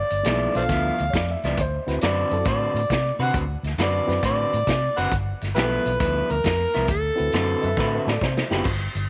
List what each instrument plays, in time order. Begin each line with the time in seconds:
Already playing: harmonica D5
0.10 fingered electric bass G1, closed hi-hat
0.23 fingered electric bass B1, clean electric guitar G2 F3 B3 E4, reed electric piano A#3 D#4 E4 G#4, snare, closed hi-hat
0.54 fingered electric bass B1, reed electric piano B3 D4 F4 A4, harmonica C5 D5 F5, closed hi-hat
0.69 fingered electric bass D2, clean electric guitar G2 F3 B3 E4, kick, snare, closed hi-hat
0.99 fingered electric bass D2, closed hi-hat
1.10 fingered electric bass F2, upright piano C#5, kick, closed hi-hat
1.15 upright piano D5, snare
1.31 upright piano E5
1.43 fingered electric bass C#2, clean electric guitar G2 F3 B3 E4, upright piano D5, snare, closed hi-hat
1.57 fingered electric bass D2, upright piano C5, kick, closed hi-hat
1.87 fingered electric bass D2, reed electric piano C4 E4 F#4 B4, snare, closed hi-hat
2.01 fingered electric bass F#2, clean electric guitar D3 C4 F#4 B4, harmonica D5, snare, closed hi-hat
2.31 fingered electric bass F#2, reed electric piano C4 E4 F#4 A4, closed hi-hat
2.45 fingered electric bass A2, clean electric guitar D3 C4 F#4 B4, harmonica D5, kick, snare, closed hi-hat
2.74 fingered electric bass A2, closed hi-hat
2.90 fingered electric bass C3, kick, snare, closed hi-hat
3.19 fingered electric bass C3, clean electric guitar D3 C4 F#4 B4, harmonica F#5, closed hi-hat
3.34 fingered electric bass D2, kick, closed hi-hat
3.63 fingered electric bass D2, snare, closed hi-hat
3.78 fingered electric bass F#2, clean electric guitar D3 C4 F#4 B4, snare, closed hi-hat
3.82 harmonica D5
4.07 fingered electric bass F#2, reed electric piano C4 E4 F#4 B4, snare, closed hi-hat
4.23 fingered electric bass A2, clean electric guitar D3 C4 F#4 B4, harmonica D5, kick, snare, closed hi-hat
4.53 fingered electric bass A2, closed hi-hat
4.67 fingered electric bass C3, kick, snare, closed hi-hat
4.97 fingered electric bass F#1, clean electric guitar D3 C4 F#4 B4, harmonica F#5, snare, closed hi-hat
5.11 fingered electric bass G1, kick, closed hi-hat
5.41 fingered electric bass G1, snare, closed hi-hat
5.55 fingered electric bass B1, clean electric guitar G2 F3 B3 E4, reed electric piano B3 E4 F4 A4, harmonica E4 G4 B4, snare, closed hi-hat
5.86 fingered electric bass B1, closed hi-hat
6.00 fingered electric bass D2, clean electric guitar G2 F3 B3 E4, harmonica B4, kick, closed hi-hat
6.30 fingered electric bass D2, harmonica A#4, closed hi-hat
6.44 fingered electric bass F2, kick, snare, closed hi-hat
6.74 fingered electric bass C2, clean electric guitar G2 F3 B3 E4, snare, closed hi-hat
6.88 fingered electric bass D2, harmonica A4, kick, closed hi-hat
7.16 reed electric piano C4 E4 F#4 B4, closed hi-hat
7.20 fingered electric bass D2
7.32 fingered electric bass F#2, clean electric guitar D3 C4 F#4 B4, snare, closed hi-hat
7.61 fingered electric bass F#2, upright piano B4 D#5, closed hi-hat
7.65 upright piano E5
7.77 fingered electric bass A2, clean electric guitar D3 C4 F#4 B4, upright piano B4 E5, kick, snare
7.94 upright piano B4 E5
8.07 fingered electric bass A2, upright piano A4 D5, snare
8.21 fingered electric bass C3, upright piano C5, kick, snare
8.37 snare
8.49 fingered electric bass F#1, reed electric piano G2 B3 E4 F4 G4, clean electric guitar C4 B4, snare
8.53 clean electric guitar D3 F#4
8.64 fingered electric bass G1, kick, crash
8.95 fingered electric bass G1, closed hi-hat